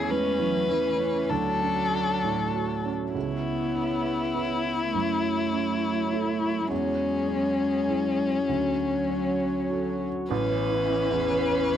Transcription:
Already playing: felt piano E2 C#4, cello E3, analog synth pad A3 E4 C#5, viola E4, violin G#4
0.10 cello G#3, viola C#4, felt piano E4, violin B4
0.39 felt piano E3, cello F#3
0.68 cello E3, viola C#4, felt piano E4
1.00 cello E3, felt piano C#4
1.29 felt piano D2, cello F#3, viola D4, analog synth pad F#4, violin A4
1.61 felt piano C#4
1.93 felt piano F#4
2.23 felt piano A2
2.54 felt piano F#4
2.85 felt piano C#4
3.13 felt piano C#2, analog synth pad B3 E4 C#5, cello B3, violin E4
3.75 felt piano C#4
4.34 felt piano E4 B4
4.93 felt piano F#2, analog synth pad F#3, cello A3
5.53 felt piano C#4
6.12 felt piano E4 A4
6.69 felt piano E2, cello G#3, violin C#4, analog synth pad G#4
7.28 felt piano C#4
7.88 felt piano E4 G#4
8.48 felt piano D2, cello F#3, analog synth pad F#4 C#5
9.09 felt piano C#4
9.70 felt piano F#4 A4
10.30 felt piano A1, cello E3, analog synth pad B3 E4 C#5, viola C#4, violin B4
10.50 felt piano B4
10.70 felt piano E4
10.90 felt piano C#4
11.11 felt piano E2
11.30 felt piano B4
11.50 felt piano C#5
11.69 felt piano B4

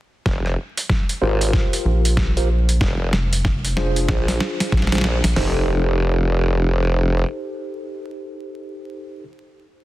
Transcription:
0.26 wobble bass F1, kick, snare
0.46 cross-stick
0.78 closed hi-hat
0.90 kick, snare
1.09 closed hi-hat
1.21 wobble bass G#1, tine electric piano F4 G4 A#4 C5
1.41 closed hi-hat
1.53 kick, snare
1.73 closed hi-hat
1.85 analog synth bass A#1
2.05 closed hi-hat
2.17 kick, snare
2.37 tine electric piano F4 G4 A#4 C5, closed hi-hat
2.69 closed hi-hat
2.81 wobble bass F1, kick, snare
3.13 analog synth bass F1, snare
3.33 closed hi-hat
3.45 kick, snare
3.65 closed hi-hat
3.77 tine electric piano D4 F4 G#4 C5, snare
3.96 closed hi-hat
4.08 wobble bass A#1, kick, snare
4.28 snare, closed hi-hat
4.40 snare
4.60 snare, closed hi-hat
4.72 analog synth bass A#1, kick, snare
4.77 snare
4.82 snare
4.87 snare
4.92 tine electric piano D4 F4 G#4 C5, snare, closed hi-hat
4.95 snare
4.98 snare
5.01 snare
5.04 wobble bass A#1, snare
5.24 analog synth bass A#1, snare, closed hi-hat
5.36 wobble bass F1, tine electric piano D#4 G4 A4 C5, snare, floor tom, open hi-hat

